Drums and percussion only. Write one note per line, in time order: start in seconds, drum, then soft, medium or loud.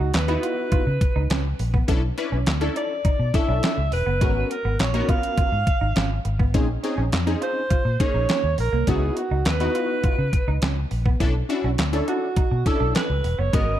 0.14 snare loud
0.14 clap medium
0.14 closed hi-hat medium
0.28 closed hi-hat medium
0.43 closed hi-hat medium
0.72 kick loud
0.72 closed hi-hat medium
1.01 kick medium
1.01 closed hi-hat medium
1.30 snare loud
1.30 clap loud
1.30 closed hi-hat medium
1.59 open hi-hat medium
1.74 kick medium
1.88 kick loud
1.88 closed hi-hat medium
2.18 closed hi-hat medium
2.46 snare loud
2.46 clap medium
2.46 closed hi-hat medium
2.61 closed hi-hat medium
2.76 closed hi-hat medium
3.05 kick medium
3.05 closed hi-hat medium
3.34 kick medium
3.34 closed hi-hat medium
3.63 snare loud
3.63 clap medium
3.63 closed hi-hat medium
3.92 open hi-hat medium
4.21 kick loud
4.21 closed hi-hat medium
4.51 closed hi-hat medium
4.79 snare loud
4.79 clap medium
4.79 closed hi-hat medium
4.94 closed hi-hat medium
5.09 kick medium
5.09 closed hi-hat medium
5.23 closed hi-hat medium
5.38 kick loud
5.38 closed hi-hat medium
5.67 kick medium
5.67 closed hi-hat medium
5.96 snare loud
5.96 clap medium
5.96 closed hi-hat medium
6.25 closed hi-hat medium
6.40 kick medium
6.54 kick loud
6.54 closed hi-hat medium
6.84 closed hi-hat medium
7.12 snare loud
7.12 clap medium
7.12 closed hi-hat medium
7.27 closed hi-hat medium
7.42 closed hi-hat medium
7.70 kick medium
7.70 closed hi-hat medium
8.00 kick medium
8.00 closed hi-hat medium
8.29 snare loud
8.29 clap loud
8.29 closed hi-hat medium
8.58 open hi-hat medium
8.87 kick loud
8.87 closed hi-hat medium
9.17 closed hi-hat medium
9.45 snare loud
9.45 clap medium
9.45 closed hi-hat medium
9.60 closed hi-hat medium
9.75 closed hi-hat medium
10.04 kick loud
10.04 closed hi-hat medium
10.33 kick medium
10.33 closed hi-hat medium
10.62 snare loud
10.62 clap loud
10.62 closed hi-hat medium
10.91 open hi-hat medium
11.06 kick medium
11.20 kick loud
11.20 closed hi-hat medium
11.50 closed hi-hat medium
11.78 snare loud
11.78 clap medium
11.78 closed hi-hat medium
11.93 closed hi-hat medium
12.08 closed hi-hat medium
12.36 kick loud
12.36 closed hi-hat medium
12.66 kick medium
12.66 closed hi-hat medium
12.95 snare loud
12.95 clap loud
12.95 closed hi-hat medium
13.24 open hi-hat medium
13.53 kick loud
13.53 closed hi-hat medium